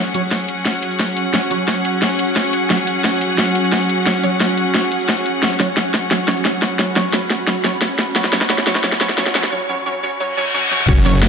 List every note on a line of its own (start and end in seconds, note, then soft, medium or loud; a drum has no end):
0.00 9.48 F#3 medium
0.00 9.48 C#4 medium
0.00 9.52 C#4 medium
0.00 9.48 G#4 medium
0.00 9.48 F#5 medium
0.14 0.22 F#3 medium
0.14 0.22 C#4 medium
0.14 9.52 F#4 medium
0.14 0.22 C#5 loud
0.14 6.49 C#6 medium
0.14 closed hi-hat medium
0.31 9.52 F#5 medium
0.31 snare medium
0.31 closed hi-hat medium
0.31 shaker soft
0.48 closed hi-hat medium
0.66 snare soft
0.66 closed hi-hat medium
0.66 shaker soft
0.83 closed hi-hat medium
0.91 shaker medium
1.00 snare medium
1.00 closed hi-hat loud
1.00 shaker soft
1.17 closed hi-hat medium
1.17 shaker soft
1.34 1.41 F#3 medium
1.34 1.41 C#4 medium
1.34 1.41 C#5 loud
1.34 snare medium
1.34 closed hi-hat loud
1.34 shaker soft
1.51 1.58 F#3 medium
1.51 1.58 C#4 medium
1.51 1.58 C#5 loud
1.51 closed hi-hat medium
1.68 snare medium
1.68 closed hi-hat loud
1.68 shaker soft
1.85 closed hi-hat medium
2.02 snare medium
2.02 closed hi-hat medium
2.02 shaker soft
2.19 closed hi-hat medium
2.28 shaker medium
2.36 snare medium
2.36 closed hi-hat medium
2.36 shaker soft
2.53 closed hi-hat medium
2.53 shaker soft
2.70 2.82 F#3 medium
2.70 2.82 C#4 medium
2.70 2.82 C#5 medium
2.70 snare medium
2.70 closed hi-hat medium
2.70 shaker soft
2.87 closed hi-hat medium
3.04 snare medium
3.04 closed hi-hat medium
3.04 shaker soft
3.21 closed hi-hat medium
3.38 snare medium
3.38 closed hi-hat medium
3.38 shaker soft
3.55 closed hi-hat medium
3.64 shaker medium
3.72 snare medium
3.72 closed hi-hat medium
3.72 shaker soft
3.89 closed hi-hat medium
3.89 shaker soft
4.06 4.14 F#3 medium
4.06 4.14 C#4 medium
4.06 4.14 C#5 medium
4.06 snare medium
4.06 closed hi-hat medium
4.06 shaker soft
4.23 4.31 F#3 medium
4.23 4.31 C#4 medium
4.23 4.31 C#5 loud
4.23 closed hi-hat medium
4.41 snare medium
4.41 closed hi-hat medium
4.41 shaker soft
4.58 closed hi-hat medium
4.75 snare medium
4.75 closed hi-hat medium
4.75 shaker soft
4.92 closed hi-hat medium
5.00 shaker medium
5.09 snare medium
5.09 closed hi-hat medium
5.09 shaker soft
5.26 closed hi-hat medium
5.26 shaker soft
5.43 5.54 F#3 medium
5.43 5.54 C#4 medium
5.43 5.54 C#5 medium
5.43 snare medium
5.43 closed hi-hat medium
5.43 riser medium
5.43 shaker medium
5.60 5.67 F#3 medium
5.60 5.67 C#4 medium
5.60 5.67 C#5 medium
5.60 snare medium
5.60 closed hi-hat medium
5.77 snare medium
5.77 closed hi-hat medium
5.77 shaker soft
5.94 snare medium
5.94 closed hi-hat medium
6.11 6.23 F#3 medium
6.11 6.23 C#4 medium
6.11 6.23 C#5 medium
6.11 snare medium
6.11 closed hi-hat medium
6.11 shaker soft
6.28 6.35 F#3 medium
6.28 6.35 C#4 medium
6.28 6.35 C#5 loud
6.28 snare medium
6.28 closed hi-hat medium
6.37 9.52 B5 medium
6.37 shaker medium
6.45 snare medium
6.45 closed hi-hat medium
6.45 shaker soft
6.62 snare medium
6.62 closed hi-hat medium
6.62 shaker soft
6.79 6.91 F#3 medium
6.79 6.91 C#4 medium
6.79 6.91 C#5 medium
6.79 snare medium
6.79 closed hi-hat loud
6.79 shaker medium
6.96 7.03 F#3 medium
6.96 7.03 C#4 medium
6.96 7.03 C#5 loud
6.96 snare medium
6.96 closed hi-hat medium
7.13 snare medium
7.13 closed hi-hat medium
7.13 shaker medium
7.30 snare medium
7.30 closed hi-hat medium
7.47 7.59 F#3 medium
7.47 7.59 C#4 medium
7.47 7.59 C#5 medium
7.47 snare medium
7.47 closed hi-hat medium
7.47 shaker soft
7.64 7.72 F#3 medium
7.64 7.72 C#4 medium
7.64 7.72 C#5 loud
7.64 snare medium
7.64 closed hi-hat medium
7.73 shaker medium
7.82 snare medium
7.82 closed hi-hat medium
7.82 shaker medium
7.99 snare medium
7.99 closed hi-hat medium
7.99 shaker soft
8.16 8.27 F#3 medium
8.16 8.27 C#4 medium
8.16 8.27 C#5 medium
8.16 snare medium
8.16 closed hi-hat medium
8.16 shaker medium
8.24 snare medium
8.33 8.40 F#3 medium
8.33 8.40 C#4 medium
8.33 8.40 C#5 loud
8.33 snare medium
8.33 closed hi-hat medium
8.41 snare medium
8.50 8.61 F#3 medium
8.50 8.61 C#4 medium
8.50 8.61 C#5 medium
8.50 snare medium
8.50 closed hi-hat loud
8.50 shaker medium
8.58 snare medium
8.67 8.74 F#3 medium
8.67 8.74 C#4 medium
8.67 8.74 C#5 loud
8.67 snare loud
8.67 closed hi-hat medium
8.75 snare medium
8.84 8.95 F#3 medium
8.84 8.95 C#4 medium
8.84 8.95 C#5 medium
8.84 snare medium
8.84 closed hi-hat loud
8.84 shaker soft
8.92 snare medium
9.01 9.08 F#3 medium
9.01 9.08 C#4 medium
9.01 9.08 C#5 loud
9.01 snare loud
9.01 closed hi-hat medium
9.09 snare medium
9.09 shaker medium
9.18 9.29 F#3 medium
9.18 9.29 C#4 medium
9.18 9.29 C#5 medium
9.18 snare loud
9.18 closed hi-hat loud
9.18 shaker medium
9.26 snare medium
9.35 9.42 F#3 medium
9.35 9.42 C#4 medium
9.35 9.42 C#5 loud
9.35 snare loud
9.35 closed hi-hat medium
9.35 shaker soft
9.44 snare medium
9.52 9.63 F#3 medium
9.52 9.64 C#4 medium
9.52 9.64 C#5 medium
9.69 9.81 F#3 medium
9.69 9.81 C#4 medium
9.69 9.81 C#5 medium
9.86 9.98 F#3 medium
9.86 9.98 C#4 medium
9.86 9.98 C#5 medium
10.03 10.15 F#3 medium
10.03 10.15 C#4 medium
10.03 10.15 C#5 medium
10.20 10.32 F#3 medium
10.20 10.32 C#4 medium
10.20 10.32 C#5 medium
10.20 reverse cymbal medium
10.37 10.49 F#3 medium
10.37 10.49 C#4 medium
10.37 10.49 C#5 medium
10.54 10.66 F#3 medium
10.54 10.66 C#4 medium
10.54 10.66 C#5 medium
10.71 10.83 F#3 medium
10.71 10.83 C#4 medium
10.71 10.83 C#5 medium
10.71 high tom medium
10.80 mid tom medium
10.88 11.29 F#1 loud
10.88 11.00 F#3 medium
10.88 11.29 F#3 medium
10.88 11.00 C#4 medium
10.88 11.29 C#4 medium
10.88 11.29 G#4 medium
10.88 11.00 C#5 medium
10.88 11.29 F#5 medium
10.88 kick loud
10.88 closed hi-hat loud
10.88 crash loud
10.88 impact medium
10.97 shaker soft
11.05 11.13 F#3 medium
11.05 11.13 C#4 medium
11.05 11.13 C#5 loud
11.05 closed hi-hat medium
11.05 shaker medium
11.23 snare loud
11.23 closed hi-hat loud